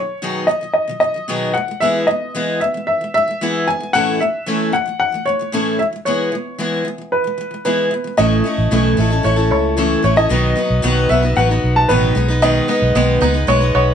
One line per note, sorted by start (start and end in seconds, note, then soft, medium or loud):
0.00 0.17 B2 medium
0.00 0.17 D#3 soft
0.00 0.18 F#3 medium
0.00 0.50 C#5 medium
0.22 0.47 B2 medium
0.22 0.48 D#3 medium
0.22 0.49 F#3 medium
0.22 0.50 B3 medium
0.22 0.50 D#4 medium
0.22 0.50 G#4 medium
0.47 0.60 B2 soft
0.47 0.61 D#3 medium
0.47 0.63 F#3 medium
0.47 0.72 D#5 medium
0.61 0.83 B2 soft
0.61 0.84 D#3 soft
0.61 0.84 F#3 soft
0.74 0.99 D#5 medium
0.88 1.00 B2 soft
0.88 1.01 D#3 soft
0.88 1.03 F#3 medium
1.00 1.13 B2 soft
1.00 1.15 D#3 medium
1.00 1.16 F#3 medium
1.00 1.56 D#5 medium
1.14 1.27 B2 soft
1.14 1.27 D#3 soft
1.14 1.28 F#3 soft
1.28 1.55 B2 medium
1.28 1.54 D#3 medium
1.28 1.56 F#3 medium
1.28 1.56 B3 medium
1.28 1.56 D#4 medium
1.28 1.56 G#4 medium
1.54 1.67 E3 medium
1.54 1.70 G#3 medium
1.54 1.82 F#5 medium
1.68 1.80 E3 soft
1.68 1.81 G#3 soft
1.80 2.06 E3 medium
1.80 2.08 G#3 medium
1.80 2.09 B3 medium
1.80 2.09 E4 medium
1.80 2.09 G#4 medium
1.80 2.09 E5 medium
2.07 2.29 E3 medium
2.07 2.31 G#3 medium
2.07 2.62 D#5 medium
2.35 2.60 E3 medium
2.35 2.62 G#3 medium
2.35 2.62 B3 medium
2.35 2.62 E4 medium
2.35 2.62 G#4 medium
2.61 2.73 E3 medium
2.61 2.85 E5 medium
2.74 2.96 E3 soft
2.74 2.97 G#3 soft
2.87 3.13 E5 medium
3.01 3.13 E3 soft
3.01 3.16 G#3 soft
3.14 3.26 E3 soft
3.14 3.29 G#3 medium
3.14 3.69 E5 loud
3.28 3.40 E3 soft
3.28 3.41 G#3 soft
3.41 3.66 E3 medium
3.41 3.68 G#3 medium
3.41 3.68 B3 medium
3.41 3.69 E4 medium
3.41 3.69 G#4 medium
3.67 3.79 E3 medium
3.67 3.82 G#3 medium
3.67 3.95 G#5 medium
3.80 3.93 E3 soft
3.80 3.94 G#3 medium
3.93 4.18 A2 medium
3.93 4.20 E3 medium
3.93 4.21 A3 medium
3.93 4.21 C#4 medium
3.93 4.21 E4 medium
3.93 4.22 A4 medium
3.93 4.21 F#5 loud
4.20 4.41 A2 soft
4.20 4.43 A3 medium
4.20 4.75 E5 medium
4.46 4.71 A2 medium
4.46 4.73 E3 medium
4.46 4.74 A3 medium
4.46 4.74 C#4 medium
4.46 4.74 E4 medium
4.46 4.74 A4 medium
4.72 4.84 A2 medium
4.72 4.86 E3 medium
4.72 4.88 A3 medium
4.72 4.98 F#5 medium
4.86 5.08 A2 soft
4.86 5.09 E3 soft
4.86 5.09 A3 soft
5.00 5.27 F#5 medium
5.12 5.24 A2 soft
5.12 5.26 E3 soft
5.12 5.28 A3 medium
5.26 5.38 A2 soft
5.26 5.40 E3 soft
5.26 5.41 A3 medium
5.26 5.81 C#5 medium
5.39 5.51 A2 soft
5.39 5.52 E3 soft
5.39 5.52 A3 soft
5.52 5.79 A2 medium
5.52 5.78 E3 medium
5.52 5.80 A3 medium
5.52 5.80 C#4 medium
5.52 5.80 E4 medium
5.52 5.81 A4 medium
5.79 5.91 E3 soft
5.79 5.94 G#3 soft
5.79 5.85 E5 medium
5.93 6.05 E3 soft
5.93 6.05 G#3 soft
6.05 6.31 E3 medium
6.05 6.33 G#3 medium
6.05 6.33 B3 medium
6.05 6.34 E4 medium
6.05 6.34 G#4 medium
6.05 6.82 C#5 medium
6.32 6.54 E3 soft
6.32 6.55 G#3 medium
6.58 6.83 E3 medium
6.58 6.86 G#3 medium
6.58 6.86 B3 medium
6.58 6.86 E4 medium
6.58 6.87 G#4 medium
6.85 6.97 E3 medium
6.85 7.00 G#3 medium
6.98 7.20 E3 soft
6.98 7.22 G#3 soft
7.12 7.63 B4 medium
7.24 7.36 E3 soft
7.24 7.40 G#3 soft
7.38 7.49 E3 soft
7.38 7.53 G#3 medium
7.51 7.64 E3 soft
7.51 7.64 G#3 soft
7.65 7.90 E3 medium
7.65 7.92 G#3 medium
7.65 7.92 B3 medium
7.65 7.93 E4 medium
7.65 7.93 G#4 medium
7.65 8.20 B4 medium
7.91 8.03 E3 medium
7.91 8.06 G#3 medium
8.04 8.17 E3 soft
8.04 8.18 G#3 medium
8.17 8.41 A1 medium
8.17 8.45 A2 medium
8.17 8.45 E3 medium
8.17 8.43 A3 medium
8.17 8.44 C#4 medium
8.17 8.45 E4 medium
8.17 8.46 A4 medium
8.17 9.27 D#5 medium
8.44 8.71 A3 medium
8.44 8.71 C#4 medium
8.44 8.72 E4 medium
8.44 8.72 A4 medium
8.58 8.69 A1 medium
8.71 8.93 B1 medium
8.71 8.98 A2 medium
8.71 8.98 E3 medium
8.71 8.96 A3 medium
8.71 8.97 C#4 medium
8.71 8.98 E4 medium
8.71 8.99 A4 medium
8.97 9.20 A1 medium
8.97 9.11 A3 medium
8.97 9.11 C#4 medium
8.97 9.10 E4 medium
8.97 9.09 A4 medium
9.10 9.22 A3 soft
9.10 9.23 C#4 soft
9.10 9.24 E4 soft
9.10 9.24 A4 soft
9.23 9.51 A1 medium
9.23 9.37 A3 soft
9.23 9.37 C#4 medium
9.23 9.36 E4 medium
9.23 9.35 A4 medium
9.23 9.49 C#5 medium
9.36 9.76 A3 soft
9.36 9.77 C#4 soft
9.36 9.77 E4 medium
9.36 9.77 A4 medium
9.51 9.95 C#2 medium
9.51 10.00 C#5 medium
9.77 10.04 A2 medium
9.77 10.04 E3 medium
9.77 10.01 A3 medium
9.77 10.03 C#4 medium
9.77 10.04 E4 medium
9.77 10.04 A4 medium
10.03 10.26 A1 medium
10.03 10.17 A3 medium
10.03 10.17 C#4 medium
10.03 10.16 E4 medium
10.03 10.15 A4 medium
10.03 10.18 C#5 medium
10.16 10.30 A3 soft
10.16 10.30 C#4 soft
10.16 10.31 E4 soft
10.16 10.30 A4 soft
10.16 11.06 D#5 loud
10.29 10.52 B1 medium
10.29 10.57 B2 medium
10.29 10.57 D#3 medium
10.29 10.54 F#3 medium
10.29 10.56 B3 medium
10.29 10.56 D#4 medium
10.29 10.57 B4 medium
10.55 10.82 F#3 soft
10.55 10.82 B3 medium
10.55 10.83 D#4 medium
10.55 10.83 B4 medium
10.70 10.81 B1 medium
10.82 11.05 B1 medium
10.82 11.09 B2 medium
10.82 11.10 D#3 medium
10.82 11.08 F#3 medium
10.82 11.09 B3 medium
10.82 11.10 D#4 medium
10.82 11.11 B4 medium
11.09 11.32 B1 medium
11.09 11.23 F#3 medium
11.09 11.23 B3 medium
11.09 11.22 D#4 medium
11.09 11.21 B4 medium
11.09 11.37 E5 medium
11.22 11.35 F#3 soft
11.22 11.36 B3 soft
11.22 11.37 D#4 soft
11.22 11.36 B4 soft
11.36 11.58 A1 medium
11.36 11.49 F#3 medium
11.36 11.50 B3 medium
11.36 11.49 D#4 medium
11.36 11.48 B4 medium
11.36 11.77 F#5 medium
11.49 11.89 F#3 soft
11.49 11.89 B3 soft
11.49 11.90 D#4 soft
11.49 11.89 B4 soft
11.64 11.85 B1 medium
11.76 11.90 A5 medium
11.89 12.11 A1 medium
11.89 12.16 B2 medium
11.89 12.16 D#3 medium
11.89 12.15 F#3 medium
11.89 12.15 B3 medium
11.89 12.16 D#4 medium
11.89 12.44 B4 medium
11.89 12.17 B4 medium
12.15 12.59 B1 medium
12.15 12.29 G#3 medium
12.15 12.29 B3 medium
12.15 12.28 D#4 medium
12.15 12.27 B4 medium
12.28 12.42 G#3 soft
12.28 12.42 B3 soft
12.28 12.43 D#4 medium
12.28 12.42 B4 medium
12.42 12.69 B2 medium
12.42 13.94 D#3 medium
12.42 12.69 D#3 medium
12.42 12.67 G#3 medium
12.42 12.68 B3 medium
12.42 12.69 D#4 medium
12.42 12.70 B4 medium
12.42 13.51 D#5 medium
12.68 12.95 G#3 medium
12.68 13.74 B3 medium
12.68 12.95 B3 medium
12.68 12.96 D#4 medium
12.68 12.96 B4 medium
12.82 12.93 B1 medium
12.95 13.17 B1 medium
12.95 13.22 B2 medium
12.95 13.22 D#3 medium
12.95 13.47 G#3 medium
12.95 13.19 G#3 medium
12.95 13.21 B3 medium
12.95 13.22 D#4 medium
12.95 13.23 B4 medium
13.21 13.43 C#2 medium
13.21 13.34 G#3 medium
13.21 13.35 B3 medium
13.21 13.94 D#4 medium
13.21 13.33 D#4 medium
13.21 13.33 B4 medium
13.34 13.46 G#3 soft
13.34 13.47 B3 soft
13.34 13.48 D#4 soft
13.34 13.48 B4 medium
13.47 13.70 B1 medium
13.47 13.61 G#3 medium
13.47 13.94 G#3 medium
13.47 13.61 B3 medium
13.47 13.60 D#4 medium
13.47 13.59 B4 medium
13.47 13.73 C#5 medium
13.60 13.94 G#3 soft
13.60 13.94 B3 soft
13.60 13.94 D#4 soft
13.60 13.94 B4 medium
13.75 13.94 B1 medium
13.75 13.94 B3 medium
13.75 13.94 C#5 medium